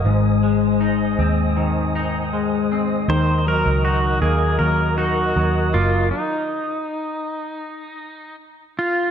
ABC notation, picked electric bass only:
X:1
M:4/4
L:1/16
Q:1/4=79
K:Ebdor
V:1 name="Picked electric bass" clef=bass
A,,,6 E,,8- E,,2 | E,,3 D,,3 E,,2 E,,4 E,,2 G,,,2 | z16 |]